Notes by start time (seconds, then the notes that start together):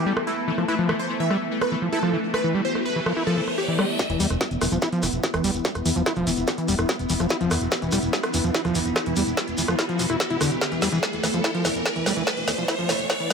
Already playing: E3 A3 B3 E4 G4 E5 A5
0.06 G3
0.17 cross-stick
0.27 E4
0.48 E3
0.58 F3, cross-stick
0.68 E4 B4, riser
0.79 F3
0.89 E3, cross-stick
0.99 C5
1.20 E3 E5
1.30 G3, cross-stick
1.61 B4, cross-stick
1.72 E3
1.82 F3
1.92 E4 A4
2.03 F3, cross-stick
2.13 E3
2.34 B4, cross-stick
2.44 E3
2.55 G3
2.65 C5
2.75 cross-stick
2.86 B4
2.96 E3
3.06 F3, cross-stick
3.17 E4
3.27 F3 A4
3.37 E3
3.48 cross-stick
3.58 G4
3.68 E3
3.79 G3, cross-stick
3.99 E3 B3, kick, snare, closed hi-hat, riser, shekere
4.08 E1 E3 E4, closed hi-hat, shekere
4.20 E2 G3, open hi-hat, shekere
4.30 E1, cross-stick, shekere
4.38 B5, kick, snare, closed hi-hat, shekere
4.51 E1 E5, closed hi-hat, shekere
4.61 E1 E3, cross-stick, open hi-hat, shekere
4.72 E1 F3, closed hi-hat, shekere
4.82 E4, kick, snare, closed hi-hat, shekere
4.92 F3, closed hi-hat, shekere
5.03 E1 E3, cross-stick, open hi-hat, shekere
5.13 E1, closed hi-hat, shekere
5.24 kick, snare, closed hi-hat, shekere
5.34 E1 E3, cross-stick, closed hi-hat, shekere
5.44 E1 G3, open hi-hat, shekere
5.55 E1, closed hi-hat, shekere
5.65 kick, snare, closed hi-hat, shekere
5.75 E1, cross-stick, closed hi-hat, shekere
5.86 E2 E3, open hi-hat, shekere
5.96 E1 F3, closed hi-hat, shekere
6.06 E4, kick, cross-stick, snare, closed hi-hat, shekere
6.15 E1 F3, closed hi-hat, shekere
6.27 E1 E3, open hi-hat, shekere
6.37 E1, closed hi-hat, shekere
6.47 kick, cross-stick, snare, closed hi-hat, shekere
6.58 E3, closed hi-hat, shekere
6.68 E1 G3, open hi-hat, shekere
6.78 E1, cross-stick, shekere
6.89 kick, snare, closed hi-hat, shekere
6.99 E1, closed hi-hat, shekere
7.10 E1 E3, open hi-hat, shekere
7.20 E1 F3, cross-stick, closed hi-hat, shekere
7.30 E4, kick, snare, closed hi-hat, shekere
7.41 E1 F3, closed hi-hat, shekere
7.51 E2 E3, cross-stick, open hi-hat, shekere
7.61 E1, closed hi-hat, shekere
7.71 kick, snare, closed hi-hat, shekere
7.82 E1 E3, closed hi-hat, shekere
7.92 E1 G3, cross-stick, open hi-hat, shekere
8.02 E1, closed hi-hat, shekere
8.13 kick, snare, closed hi-hat, shekere
8.23 cross-stick, closed hi-hat, shekere
8.34 E1 E3, open hi-hat, shekere
8.44 E1 F3, closed hi-hat, shekere
8.54 E4, kick, snare, closed hi-hat, shekere
8.65 E1 F3, cross-stick, closed hi-hat, shekere
8.75 E1 E3, open hi-hat, shekere
8.86 E1, closed hi-hat, shekere
8.96 kick, cross-stick, snare, closed hi-hat, shekere
9.06 E1 E3, closed hi-hat, shekere
9.16 E2 G3, open hi-hat, shekere
9.27 E1, closed hi-hat, shekere
9.37 kick, cross-stick, snare, closed hi-hat, shekere
9.48 E1, closed hi-hat, shekere
9.58 E1 E3, open hi-hat, shekere
9.68 E1 F3, cross-stick, shekere
9.79 E4, kick, snare, closed hi-hat, shekere
9.89 F3, closed hi-hat, shekere
9.99 E1 F3, open hi-hat, shekere
10.09 E1 E4, cross-stick, closed hi-hat, shekere
10.20 kick, snare, closed hi-hat, shekere
10.30 E1 E4, closed hi-hat, shekere
10.41 E2 D3, cross-stick, open hi-hat, shekere
10.51 E1, closed hi-hat, shekere
10.61 A3, kick, snare, closed hi-hat, shekere
10.70 E1 E3 D5, closed hi-hat, shekere
10.82 E2 G3, snare, open hi-hat, shekere
10.92 E1 E3, shekere
11.03 kick, snare, closed hi-hat, shekere
11.13 E1, closed hi-hat, shekere
11.24 E1 E3, snare, open hi-hat, shekere
11.34 E1 F3, closed hi-hat, shekere
11.44 E4, kick, snare, closed hi-hat, shekere
11.55 F3, closed hi-hat, shekere
11.65 E1 E3, snare, open hi-hat, shekere
11.75 E1, shekere
11.86 kick, snare, closed hi-hat, shekere
11.96 E1 E3, closed hi-hat, shekere
12.06 E1 G3, snare, open hi-hat, shekere
12.17 E1 E3, closed hi-hat, shekere
12.27 kick, snare, closed hi-hat, shekere
12.37 E1, closed hi-hat, shekere
12.48 E2 E3, snare, open hi-hat, shekere
12.58 E1 F3, closed hi-hat, shekere
12.68 E4, kick, snare, closed hi-hat, shekere
12.79 E1 F3, closed hi-hat, shekere
12.89 E1 E3, snare, open hi-hat, shekere
12.99 E1, closed hi-hat, shekere
13.10 kick, snare, closed hi-hat, shekere
13.20 E3, closed hi-hat, shekere